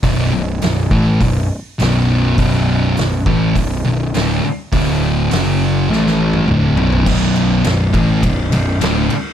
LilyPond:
<<
  \new Staff \with { instrumentName = "Distorted electric guitar" } { \clef bass \time 4/4 \key b \minor \tempo 4 = 102 <b,, fis, b,>8 <b,, fis,>8 <b,, fis,>8 <a, e a>8 <b,, fis,>8 r8 <b,, fis, b,>4 | <b,, fis, b,>4 <b,, fis,>8 <a, e a>8 <b,, fis,>8 <b,, fis,>8 <d, a, d>8 r8 | <d, a, d>4 <fis, cis fis>4 <a, e a>4 <d, a, d>8 <b,, fis, b,>8 | <b,, fis, b,>4 <b,, fis,>8 <a, e a>8 <b,, fis,>8 <b,, fis,>8 <d, a, d>8 r8 | }
  \new Staff \with { instrumentName = "Picked electric bass" } { \clef bass \time 4/4 \key b \minor b,,,8 b,,,8 b,,,8 a,,8 b,,,8 r8 b,,,4 | b,,,4 b,,,8 a,,8 b,,,8 b,,,8 d,,8 r8 | d,,4 fis,,4 a,,4 d,,8 b,,,8 | b,,,4 b,,,8 a,,8 b,,,8 b,,,8 d,,8 r8 | }
  \new DrumStaff \with { instrumentName = "Drums" } \drummode { \time 4/4 <hho bd>4 <hho sn>8 bd8 <hho bd>4 <hho sn>4 | <hho bd>4 <hho sn>8 bd8 <hho bd>4 <hho sn>4 | <hho bd>4 <hho sn>4 sn16 sn8 tommh16 toml8 tomfh16 tomfh16 | <cymc bd>8 cymr8 <cymr sn>8 <bd cymr>8 <bd cymr>8 cymr8 <cymr sn>8 cymr8 | }
>>